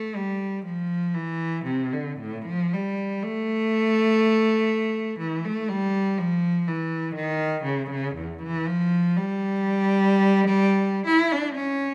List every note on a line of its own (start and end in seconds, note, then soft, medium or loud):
0.00 0.15 A3 loud
0.16 0.66 G3 loud
0.66 1.15 F3 loud
1.15 1.67 E3 loud
1.65 1.92 C3 medium
1.93 2.21 D3 medium
2.20 2.47 A2 medium
2.46 2.72 F3 loud
2.74 3.25 G3 medium
3.23 5.20 A3 loud
5.20 5.44 E3 loud
5.45 5.69 A3 loud
5.69 6.18 G3 loud
6.18 6.67 F3 loud
6.67 7.16 E3 loud
7.16 7.64 D#3 loud
7.64 7.89 C#3 loud
7.91 8.16 C#3 loud
8.16 8.41 E2 medium
8.43 8.67 E3 loud
8.67 9.16 F3 loud
9.16 11.08 G3 loud
11.07 11.31 E4 loud
11.32 11.56 D4 loud
11.55 11.94 C#4 loud